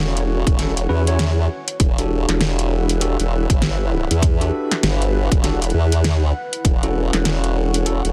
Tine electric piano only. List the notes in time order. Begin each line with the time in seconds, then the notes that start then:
Already playing: C#4 E4 F#4 A4
0.59 C#4 E4 F#4 A4
0.89 C#4 E4 F#4 B4
1.08 C#4 E4 F#4 C#5
1.99 D4 F#4 G4 A4
3.01 D4 F#4 G4 A4
4.41 D4 F#4 G4 A4
5.44 D4 F#4 G4 A4
6.83 C#4 E4 F#4 A4
7.86 C#4 E4 F#4 A4